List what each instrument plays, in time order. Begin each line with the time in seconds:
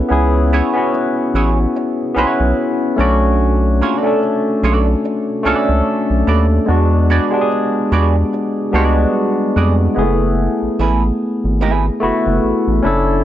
Already playing: tine electric piano B3 C#4 E4 B4
0.08 analog synth bass C#2, tine electric piano B3 C#4 E4 G#4
0.53 hollow-body jazz guitar B3 E4 G#4 C#5
0.74 tine electric piano B3 C#4 E4 F#4
0.94 muted hollow-body jazz guitar stroke
1.34 analog synth bass A1, hollow-body jazz guitar B3 E4 G#4 C#5
1.76 muted hollow-body jazz guitar stroke
2.14 analog synth bass B1, tine electric piano B3 C#4 E4 B4, hollow-body jazz guitar B3 E4 G#4 C#5
2.40 analog synth bass B1
2.96 analog synth bass B1, tine electric piano A3 C#4 D4, hollow-body jazz guitar B3 F#4 A4
3.00 tine electric piano F#4, hollow-body jazz guitar D5
3.81 hollow-body jazz guitar A#3 F4 G#4 C#5
3.96 hollow-body jazz guitar B3 F#4 A4 D5
4.02 tine electric piano A3 C#4 D4
4.07 tine electric piano A4
4.22 muted hollow-body jazz guitar stroke
4.63 analog synth bass B1, hollow-body jazz guitar B3 F#4 A4 D5
5.05 muted hollow-body jazz guitar stroke
5.43 analog synth bass C#2, tine electric piano A3 C#4 D4, hollow-body jazz guitar B3 F#4 A4 D5
5.47 tine electric piano A4
5.69 analog synth bass C#2
6.10 analog synth bass B1
6.27 analog synth bass D#2, hollow-body jazz guitar B3 F#4 A4 D5
6.66 analog synth bass E2, tine electric piano G#3 B3 D4
6.70 tine electric piano F#4
7.10 hollow-body jazz guitar B3 F#4 G#4 D5
7.31 tine electric piano G#3 B3 D4 G4
7.41 tine electric piano G#4
7.51 muted hollow-body jazz guitar stroke
7.92 analog synth bass E2, hollow-body jazz guitar B3 F#4 G#4 D5
8.33 muted hollow-body jazz guitar stroke
8.71 analog synth bass C#2, tine electric piano G3 B3 D4 F#4, hollow-body jazz guitar B3 F#4 G#4
8.76 tine electric piano G#3, hollow-body jazz guitar D5
9.56 analog synth bass F2, hollow-body jazz guitar B3 F#4 G#4 D5
9.95 analog synth bass F#1, tine electric piano G#3 B3 E4
9.99 tine electric piano A3 G#4
10.62 analog synth bass A1
10.79 analog synth bass A1, hollow-body jazz guitar A3 E4 G#4 B4
11.44 analog synth bass G#1
11.61 hollow-body jazz guitar A3 E4 G#4 B4
12.00 analog synth bass F#1, tine electric piano A3 B3 E4 F#4
12.27 analog synth bass F#1
12.44 analog synth bass A1
12.68 analog synth bass A1
12.82 analog synth bass F#1, tine electric piano C#4 D4 E4
12.86 tine electric piano A4